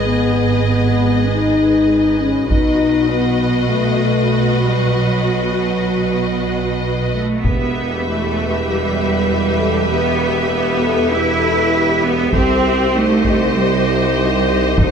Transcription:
Already playing: double bass section G#1, cello section G#2, viola section G#4, violin section B4 D#5
0.06 french horn section B3
0.64 french horn section B3
1.27 french horn section D#4
2.19 french horn section C#4
2.48 double bass section B1, cello section B2, french horn section D#4, viola section F#4, violin section B4 D#5, taiko
3.10 french horn section B3
3.68 french horn section A3
4.64 french horn section G3
4.96 french horn section F#3
7.13 cello section A3
7.43 tuba E1, double bass section E2, cello section B3, viola section G4, violin section B4 E5, taiko
8.06 cello section A3
8.66 cello section G3, french horn section G4
9.24 french horn section B4
9.57 french horn section A4
9.89 cello section B3, french horn section G4
10.20 french horn section G4
10.50 cello section B3, french horn section G4
10.81 french horn section A4
11.11 cello section E4, french horn section G4
11.40 french horn section A4
11.71 french horn section G4
12.03 cello section B3
12.31 double bass section C2, tuba C2, cello section C4, viola section G4, french horn section A4, violin section C5, taiko
12.61 french horn section G4
12.92 cello section A3, french horn section D#4, violin section D#5
13.25 taiko
13.53 cello section G3, french horn section G4
13.83 french horn section E4
14.13 french horn section D#4
14.76 cello section D#4, french horn section G4, taiko

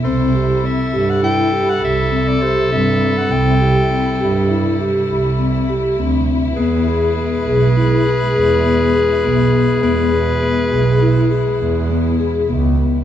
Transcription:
Already playing: string section E4
0.04 double bass C2, string section C3 G3, vibraphone C4, clarinet A4, soprano saxophone C5
0.35 vibraphone G4
0.64 vibraphone C4, soprano saxophone E5
0.93 double bass G2, vibraphone G4
1.10 soprano saxophone F#5
1.23 vibraphone E4, soprano saxophone G5
1.52 vibraphone G4
1.69 soprano saxophone F#5
1.82 double bass C2, soprano saxophone E5
2.12 vibraphone C4
2.28 soprano saxophone D5
2.42 vibraphone G4, soprano saxophone C5
2.72 double bass G2, vibraphone C4, soprano saxophone E5
3.18 soprano saxophone F#5
3.31 double bass C2, vibraphone C4, soprano saxophone G5
3.61 vibraphone G4
3.91 vibraphone C4
4.20 double bass G2, vibraphone G4
4.51 vibraphone E4
4.80 vibraphone G4
5.09 double bass C2
5.39 vibraphone C4
5.69 vibraphone G4
5.99 double bass D2, vibraphone C4
6.56 double bass E2, string section B2 G#3, vibraphone B3, clarinet G#4, soprano saxophone B4
6.88 vibraphone G#4
7.17 vibraphone B3
7.46 double bass B1, vibraphone G#4
7.76 vibraphone E4
8.06 vibraphone G#4
8.35 double bass E2
8.65 vibraphone B3
8.95 vibraphone G#4
9.24 double bass B1, vibraphone B3
9.83 double bass E2, vibraphone B3, soprano saxophone B4
10.12 vibraphone G#4
10.42 vibraphone B3
10.72 double bass B1, vibraphone G#4
11.01 vibraphone E4
11.31 vibraphone G#4
11.60 double bass E2
11.90 vibraphone B3
12.20 vibraphone G#4
12.49 double bass C#2, vibraphone B3

